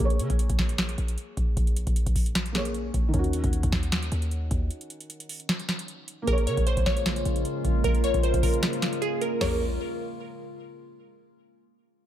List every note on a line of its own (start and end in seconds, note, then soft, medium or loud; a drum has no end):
0.00 0.21 A#1 loud
0.00 2.48 A#3 medium
0.00 2.51 G#4 medium
0.00 kick loud
0.05 2.53 C#5 medium
0.10 closed hi-hat medium
0.19 0.29 C#3 loud
0.19 closed hi-hat medium
0.30 0.49 A#1 loud
0.30 kick loud
0.30 closed hi-hat medium
0.39 closed hi-hat medium
0.49 0.96 A#1 loud
0.49 kick medium
0.49 closed hi-hat medium
0.59 kick loud
0.59 snare loud
0.69 closed hi-hat medium
0.78 snare loud
0.78 closed hi-hat medium
0.89 closed hi-hat medium
0.98 1.17 A#1 loud
0.98 closed hi-hat medium
1.08 closed hi-hat medium
1.18 closed hi-hat medium
1.37 1.56 A#1 loud
1.37 kick medium
1.37 closed hi-hat medium
1.57 1.86 A#1 loud
1.57 kick loud
1.57 closed hi-hat medium
1.67 closed hi-hat medium
1.76 closed hi-hat medium
1.87 2.06 A#1 loud
1.87 kick loud
1.87 closed hi-hat medium
1.96 closed hi-hat medium
2.06 2.91 A#1 loud
2.06 kick medium
2.06 closed hi-hat medium
2.16 kick loud
2.16 open hi-hat medium
2.26 closed hi-hat medium
2.35 snare loud
2.35 closed hi-hat medium
2.46 closed hi-hat medium
2.52 3.12 A#3 medium
2.52 3.14 G#4 soft
2.52 snare loud
2.52 closed hi-hat medium
2.57 3.15 C#5 medium
2.65 closed hi-hat medium
2.74 closed hi-hat medium
2.94 3.13 A#1 loud
2.94 kick loud
2.94 closed hi-hat medium
3.08 6.21 D#3 medium
3.14 3.42 D#2 loud
3.14 6.23 C#4 medium
3.14 kick loud
3.14 closed hi-hat medium
3.19 6.26 F#4 medium
3.24 closed hi-hat medium
3.33 closed hi-hat medium
3.44 3.63 D#2 loud
3.44 kick loud
3.44 closed hi-hat medium
3.53 closed hi-hat medium
3.63 3.72 D#2 loud
3.63 kick medium
3.63 closed hi-hat medium
3.72 4.10 D#2 loud
3.72 kick loud
3.72 snare loud
3.83 closed hi-hat medium
3.92 snare loud
3.92 closed hi-hat medium
4.02 closed hi-hat medium
4.12 4.49 D#2 loud
4.12 closed hi-hat medium
4.22 closed hi-hat medium
4.31 closed hi-hat medium
4.51 4.70 D#2 loud
4.51 kick medium
4.51 closed hi-hat medium
4.71 closed hi-hat medium
4.81 closed hi-hat medium
4.90 closed hi-hat medium
5.01 closed hi-hat medium
5.10 closed hi-hat medium
5.20 closed hi-hat medium
5.29 open hi-hat medium
5.40 closed hi-hat medium
5.49 snare loud
5.49 closed hi-hat medium
5.59 closed hi-hat medium
5.69 snare loud
5.69 closed hi-hat medium
5.79 closed hi-hat medium
5.88 closed hi-hat medium
6.08 closed hi-hat medium
6.22 9.34 A#3 medium
6.27 6.48 A#1 loud
6.27 9.38 C#3 medium
6.27 9.38 G#3 medium
6.27 9.38 A#3 medium
6.27 9.38 F4 medium
6.27 9.37 G#4 medium
6.27 6.42 A#4 loud
6.27 kick loud
6.27 closed hi-hat medium
6.33 9.40 C#5 medium
6.38 closed hi-hat medium
6.47 6.57 C#3 loud
6.47 6.62 C#5 medium
6.47 closed hi-hat medium
6.57 6.76 A#1 loud
6.57 kick loud
6.57 closed hi-hat medium
6.67 6.82 C5 medium
6.67 closed hi-hat medium
6.77 7.24 A#1 loud
6.77 kick medium
6.77 closed hi-hat medium
6.86 7.80 C#5 medium
6.86 kick loud
6.86 snare loud
6.97 closed hi-hat medium
7.06 snare loud
7.06 closed hi-hat medium
7.16 closed hi-hat medium
7.25 7.44 A#1 loud
7.25 closed hi-hat medium
7.36 closed hi-hat medium
7.45 closed hi-hat medium
7.65 7.83 A#1 loud
7.65 kick medium
7.65 closed hi-hat medium
7.84 8.13 A#1 loud
7.84 7.99 A#4 medium
7.84 kick loud
7.84 closed hi-hat medium
7.95 closed hi-hat medium
8.04 8.19 C#5 medium
8.04 closed hi-hat medium
8.14 8.33 A#1 loud
8.14 kick loud
8.14 closed hi-hat medium
8.23 8.38 C5 medium
8.23 closed hi-hat medium
8.34 8.62 A#1 loud
8.34 kick medium
8.34 closed hi-hat medium
8.43 8.98 A#4 medium
8.43 kick loud
8.43 open hi-hat medium
8.54 closed hi-hat medium
8.63 snare loud
8.63 closed hi-hat medium
8.73 closed hi-hat medium
8.82 snare loud
8.82 closed hi-hat medium
8.93 closed hi-hat medium
9.02 9.17 G#4 medium
9.02 closed hi-hat medium
9.21 9.36 A#4 medium
9.21 closed hi-hat medium
9.41 9.78 A#1 loud
9.41 9.59 A#3 medium
9.41 9.59 G#4 medium
9.41 9.59 A#4 medium
9.41 9.59 C#5 loud
9.41 snare loud
9.41 floor tom loud
9.41 crash medium